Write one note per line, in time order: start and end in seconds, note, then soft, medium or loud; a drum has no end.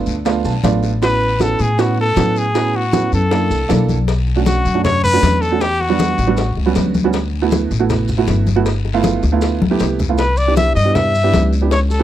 0.00 0.14 A3 medium
0.00 0.14 B3 medium
0.00 0.15 D4 medium
0.00 0.15 F4 medium
0.06 0.42 D2 medium
0.06 high conga soft
0.06 short guiro medium
0.06 maracas soft
0.25 0.52 A3 medium
0.25 0.52 B3 medium
0.25 0.53 D4 medium
0.25 0.53 F4 loud
0.25 high bongo medium
0.25 high conga soft
0.25 long guiro medium
0.25 maracas medium
0.44 0.63 B1 medium
0.44 0.63 A5 medium
0.44 high bongo soft
0.44 high conga soft
0.44 maracas medium
0.63 1.53 A1 medium
0.63 0.91 A3 medium
0.63 0.91 B3 medium
0.63 0.91 D4 medium
0.63 0.91 F4 medium
0.63 1.00 D5 medium
0.63 high bongo medium
0.63 low bongo medium
0.63 high conga medium
0.63 short guiro medium
0.63 maracas medium
0.83 high bongo soft
0.83 short guiro medium
0.83 maracas soft
1.02 1.29 B3 medium
1.02 1.29 C#4 medium
1.02 1.29 E4 medium
1.02 1.29 F#4 medium
1.02 1.44 B4 loud
1.02 high bongo medium
1.02 high conga soft
1.02 long guiro medium
1.02 maracas medium
1.21 high conga soft
1.40 1.67 B3 medium
1.40 1.67 C#4 medium
1.40 1.67 E4 medium
1.40 1.67 F#4 medium
1.40 1.63 A4 loud
1.40 high bongo medium
1.40 high conga medium
1.40 short guiro medium
1.40 maracas medium
1.59 2.13 A2 medium
1.59 1.82 G#4 medium
1.59 high conga soft
1.59 short guiro medium
1.59 maracas soft
1.78 2.05 B3 medium
1.78 2.05 C#4 medium
1.78 2.06 E4 medium
1.78 2.06 F#4 medium
1.78 1.99 F#4 medium
1.78 high bongo medium
1.78 high conga soft
1.78 long guiro medium
1.78 maracas medium
1.97 2.40 A4 loud
1.97 high conga soft
2.16 3.06 A2 medium
2.16 2.44 B3 medium
2.16 2.44 C#4 medium
2.16 2.44 E4 medium
2.16 2.44 F#4 medium
2.16 high bongo medium
2.16 low bongo medium
2.16 high conga medium
2.16 short guiro medium
2.16 maracas medium
2.36 2.78 G#4 medium
2.36 short guiro medium
2.36 maracas soft
2.55 2.82 B3 medium
2.55 2.82 C#4 medium
2.55 2.82 E4 medium
2.55 2.82 F#4 medium
2.55 high bongo medium
2.55 high conga soft
2.55 long guiro medium
2.55 maracas medium
2.74 3.14 F#4 medium
2.74 high bongo soft
2.74 high conga soft
2.93 3.20 B3 medium
2.93 3.20 C#4 medium
2.93 3.20 E4 medium
2.93 3.20 F#4 medium
2.93 high bongo medium
2.93 high conga medium
2.93 short guiro medium
2.93 maracas medium
3.12 3.48 F#2 medium
3.12 3.86 A4 medium
3.12 high conga soft
3.12 short guiro medium
3.12 maracas soft
3.31 3.58 A#3 medium
3.31 3.58 D4 medium
3.31 3.58 E4 medium
3.31 3.58 A4 medium
3.31 high bongo medium
3.31 high conga soft
3.31 long guiro medium
3.31 maracas medium
3.51 3.68 C2 medium
3.51 high bongo soft
3.51 high conga soft
3.51 maracas medium
3.69 4.60 B1 medium
3.69 3.96 A#3 medium
3.69 3.96 D4 medium
3.69 3.96 E4 medium
3.69 3.96 A4 loud
3.69 high bongo medium
3.69 low bongo medium
3.69 high conga medium
3.69 short guiro medium
3.69 maracas medium
3.89 high bongo soft
3.89 high conga medium
3.89 short guiro medium
3.89 maracas soft
4.08 high bongo medium
4.08 high conga soft
4.08 long guiro medium
4.08 maracas medium
4.28 high conga soft
4.36 4.63 A3 medium
4.36 4.63 C#4 medium
4.36 4.63 D4 medium
4.36 4.64 F#4 medium
4.46 4.82 F#4 medium
4.46 high bongo medium
4.46 high conga medium
4.46 short guiro medium
4.46 maracas medium
4.65 5.19 F#2 medium
4.65 high conga soft
4.65 short guiro medium
4.65 maracas soft
4.74 5.01 A3 medium
4.74 5.01 C#4 medium
4.74 5.01 D4 medium
4.74 5.02 F#4 medium
4.84 5.02 C#5 loud
4.84 high bongo medium
4.84 high conga soft
4.84 low conga medium
4.84 long guiro medium
4.84 maracas medium
5.04 5.43 B4 loud
5.04 high conga soft
5.04 low conga medium
5.04 maracas medium
5.13 5.40 A3 medium
5.13 5.40 C#4 medium
5.13 5.40 D4 medium
5.13 5.40 F#4 medium
5.22 6.12 E2 loud
5.22 high bongo medium
5.22 low bongo medium
5.22 high conga medium
5.22 short guiro medium
5.22 maracas medium
5.42 5.63 A4 medium
5.42 short guiro medium
5.42 maracas soft
5.51 5.61 A3 medium
5.51 5.61 C#4 medium
5.51 5.61 D4 medium
5.51 5.61 F#4 medium
5.61 5.82 G4 medium
5.61 high bongo medium
5.61 high conga soft
5.61 long guiro medium
5.61 maracas medium
5.80 6.57 F#4 medium
5.80 high bongo soft
5.80 high conga soft
5.89 6.16 G3 medium
5.89 6.16 B3 medium
5.89 6.16 D4 medium
5.89 6.16 F#4 medium
5.99 high bongo medium
5.99 high conga loud
5.99 short guiro medium
5.99 maracas medium
6.18 6.54 A1 loud
6.18 high bongo soft
6.18 high conga soft
6.18 short guiro medium
6.18 maracas soft
6.27 6.37 G3 medium
6.27 6.37 B3 medium
6.27 6.37 D4 medium
6.27 6.37 F#4 loud
6.37 high bongo medium
6.37 high conga soft
6.37 long guiro medium
6.37 maracas medium
6.56 6.74 C#2 medium
6.56 high bongo soft
6.56 high conga soft
6.66 6.93 G3 medium
6.66 6.93 B3 medium
6.66 6.93 C#4 medium
6.66 6.93 F#4 medium
6.75 7.65 D2 medium
6.75 high bongo medium
6.75 low bongo medium
6.75 high conga medium
6.75 short guiro medium
6.75 maracas medium
6.94 high conga medium
6.94 short guiro medium
6.94 maracas soft
7.04 7.14 G3 medium
7.04 7.14 B3 medium
7.04 7.14 C#4 medium
7.04 7.14 F#4 loud
7.13 high bongo medium
7.13 high conga soft
7.13 long guiro medium
7.13 maracas medium
7.33 high conga soft
7.42 7.69 A3 medium
7.42 7.69 B3 medium
7.42 7.69 E4 medium
7.42 7.69 F#4 medium
7.51 high bongo medium
7.51 high conga loud
7.51 short guiro medium
7.51 maracas medium
7.71 8.24 A1 medium
7.71 high conga soft
7.71 short guiro medium
7.71 maracas soft
7.79 8.07 A3 medium
7.79 8.07 B3 medium
7.79 8.07 E4 medium
7.79 8.07 F#4 medium
7.90 high bongo medium
7.90 high conga soft
7.90 low conga medium
7.90 long guiro medium
7.90 maracas medium
8.08 high conga soft
8.08 low conga medium
8.08 maracas medium
8.18 8.45 A3 medium
8.18 8.45 B3 medium
8.18 8.45 E4 medium
8.18 8.45 F#4 loud
8.27 9.17 G1 medium
8.27 high bongo medium
8.27 low bongo medium
8.27 high conga medium
8.27 short guiro medium
8.27 maracas medium
8.46 high conga medium
8.46 short guiro medium
8.46 maracas soft
8.56 8.66 A3 medium
8.56 8.66 B3 medium
8.56 8.66 E4 medium
8.56 8.66 F#4 loud
8.66 high bongo medium
8.66 long guiro medium
8.66 maracas medium
8.85 high bongo soft
8.85 high conga soft
8.94 9.21 A3 loud
8.94 9.21 B3 medium
8.94 9.21 E4 medium
8.94 9.21 F4 loud
9.04 high bongo medium
9.04 high conga medium
9.04 short guiro medium
9.04 maracas medium
9.23 9.59 D2 loud
9.23 high bongo soft
9.23 high conga soft
9.23 short guiro medium
9.23 maracas soft
9.32 9.59 A3 medium
9.32 9.59 B3 medium
9.32 9.60 E4 medium
9.32 9.60 F4 medium
9.41 high bongo medium
9.41 high conga soft
9.41 long guiro medium
9.41 maracas medium
9.61 9.79 C#2 medium
9.61 high bongo soft
9.61 high conga loud
9.71 9.97 A3 medium
9.71 9.98 B3 medium
9.71 9.98 E4 medium
9.71 9.98 G4 medium
9.79 10.70 C2 medium
9.79 high bongo medium
9.79 low bongo medium
9.79 short guiro medium
9.79 maracas medium
9.99 low conga medium
9.99 short guiro medium
9.99 maracas soft
10.09 10.19 A3 medium
10.09 10.19 B3 medium
10.09 10.19 E4 medium
10.09 10.19 F4 medium
10.18 10.39 B4 medium
10.18 high bongo medium
10.18 high conga soft
10.18 long guiro medium
10.18 maracas medium
10.37 10.57 D5 medium
10.37 high conga soft
10.37 maracas medium
10.47 10.74 B3 medium
10.47 10.74 D4 medium
10.47 10.74 E4 medium
10.47 10.74 G4 medium
10.56 10.75 E5 loud
10.56 high bongo medium
10.56 high conga loud
10.56 short guiro medium
10.56 maracas medium
10.75 11.29 G2 loud
10.75 10.96 D#5 loud
10.75 high conga soft
10.75 short guiro medium
10.75 maracas soft
10.85 11.12 B3 medium
10.85 11.12 D4 medium
10.85 11.12 E4 medium
10.85 11.12 G4 medium
10.95 11.52 E5 loud
10.95 high bongo medium
10.95 high conga soft
10.95 low conga medium
10.95 long guiro medium
10.95 maracas medium
11.15 high conga soft
11.15 maracas medium
11.23 11.50 B3 medium
11.23 11.50 D4 medium
11.23 11.51 E4 medium
11.23 11.51 G4 medium
11.33 12.03 C#2 loud
11.33 high bongo medium
11.33 low bongo medium
11.33 high conga medium
11.33 short guiro medium
11.33 maracas medium
11.53 short guiro medium
11.53 maracas soft
11.61 11.71 B3 medium
11.61 11.71 D4 medium
11.61 11.72 E4 medium
11.61 11.72 G4 medium
11.71 11.80 C#5 medium
11.71 high bongo medium
11.71 high conga soft
11.71 long guiro medium
11.71 maracas medium
11.90 12.03 A4 medium
11.90 high bongo soft
11.90 high conga soft
11.90 maracas medium
11.99 12.03 B3 medium
11.99 12.03 C#4 medium
11.99 12.03 E4 medium
11.99 12.03 G4 medium